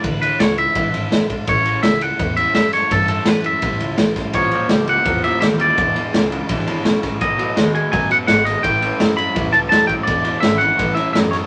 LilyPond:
<<
  \new Staff \with { instrumentName = "Clean electric guitar" } { \time 4/4 \key a \major \tempo 4 = 167 b'8 b'8 cis''8 e''2 r8 | cis''4 e''8 fis''4 e''8 e''8 cis''8 | a'8 a'8 b'8 e''2 r8 | cis''4 r8 fis''4 e''8 e''8 d''8~ |
d''2. r4 | dis''4. gis''8 gis''8 fis''8 fis''8 dis''8 | g''4. b''4 a''8 a''8 g''8 | d''4 e''8 fis''4 e''8 e''8 cis''8 | }
  \new Staff \with { instrumentName = "Steel-string acoustic guitar" } { \time 4/4 \key a \major <e, b, e gis d' e'>8 <e gis d' e'>8 <e gis d' e'>8 <e gis d' e'>8 <e, b, e gis d' e'>8 <e gis d' e'>8 <e gis d' e'>8 <e gis d' e'>8 | <a, e g cis' e'>8 <g cis' e'>8 <e g cis' e'>8 <g cis' e'>8 <a, e g cis' e'>8 <g cis' e'>8 <e g cis' e'>8 <g cis' e'>8 | <a, e g cis' e'>8 <g cis' e'>8 <e g cis' e'>8 <g cis' e'>8 <a, e g cis' e'>8 <g cis' e'>8 <e g cis' e'>8 <g cis' e'>8 | <ais, e g cis' e'>8 <g cis' e'>8 <e g cis' e'>8 <g cis' e'>8 <ais, e g cis' e'>8 <g cis' e'>8 <e g cis' e'>8 <g cis' e'>8 |
<e, b, e gis d' e'>8 <e gis d' e'>8 <e gis d' e'>8 <e gis d' e'>8 <e, b, e gis d' e'>8 <e gis d' e'>8 <e gis d' e'>8 <e gis d' e'>8 | <b, dis a b fis'>8 <a b fis'>8 <dis a b fis'>8 <a b fis'>8 <b, dis a b fis'>8 <a b fis'>8 <dis a b fis'>8 <a b fis'>8 | <a, e g cis' e'>8 <g cis' e'>8 <e g cis' e'>8 <g cis' e'>8 <a, e g cis' e'>8 <g cis' e'>8 <e g e'>8 <g cis' e'>8 | <e, b, e gis d' e'>8 <e gis d' e'>8 <e gis d' e'>8 <e gis d' e'>8 <a, e g cis' e'>8 <g cis' e'>8 <e g cis' e'>8 <g cis' e'>8 | }
  \new Staff \with { instrumentName = "Clean electric guitar" } { \clef bass \time 4/4 \key a \major r1 | r1 | r1 | <ais, f>8 <ais, f>8 <ais, g>8 <ais, g>8 <ais, f>8 <ais, f>8 <ais, g>8 <ais, g>8 |
<e, b,>8 <e, b,>8 <e, cis>8 <e, cis>8 <e, b,>8 <e, b,>8 <e, cis>8 <e, cis>8 | <b, fis>8 <b, fis>8 <b, gis>8 <b, gis>8 <b, fis>8 <b, fis>8 <b, gis>8 <b, gis>8 | <a, e>8 <a, e>8 <a, fis>8 <a, fis>8 <a, e>8 <a, e>8 <a, fis>8 <a, fis>8 | <e, b,>8 <e, b,>8 <e, cis>8 <e, cis>8 <a, e>8 <a, e>8 <a, fis>8 <a, fis>8 | }
  \new Staff \with { instrumentName = "Upright bass" } { \clef bass \time 4/4 \key a \major d,4 cis,4 b,,8 gis,,8 b,,4 | a,,4 cis,4 e,4 fis,4 | g,4 fis,4 e,8 cis,8 b,,4 | ais,,4 cis,4 e,4 dis,4 |
e,,4 cis,4 b,,8 gis,,8 b,,4 | b,,4 dis,4 fis,4 gis,,4 | a,,4 fis,4 e,8 cis,8 e,4 | e,,4 gis,,4 a,,4 fis,4 | }
  \new DrumStaff \with { instrumentName = "Drums" } \drummode { \time 4/4 <bd cymr>8 cymr8 <cymr sn>8 cymr8 <bd cymr>8 cymr8 <cymr sn>8 <bd cymr>8 | <bd cymr>8 cymr8 <cymr sn>8 cymr8 <bd cymr>8 cymr8 <cymr sn>8 <cymr sn>8 | <bd cymr>8 cymr8 <cymr sn>8 cymr8 <bd cymr>8 cymr8 <cymr sn>8 <bd cymr sn>8 | <bd cymr>8 cymr8 <cymr sn>8 cymr8 <bd cymr>8 cymr8 <cymr sn>8 cymr8 |
<bd cymr>8 cymr8 <cymr sn>8 cymr8 <bd cymr>8 cymr8 <cymr sn>8 <bd cymr sn>8 | <bd cymr>8 cymr8 <cymr sn>8 cymr8 <bd cymr>8 cymr8 <cymr sn>8 <cymr sn>8 | <bd cymr>8 cymr8 <cymr sn>8 cymr8 <bd cymr>8 cymr8 <cymr sn>8 <bd cymr>8 | <bd cymr>8 cymr8 <cymr sn>8 cymr8 <bd cymr>8 cymr8 <cymr sn>8 <cymr sn>8 | }
>>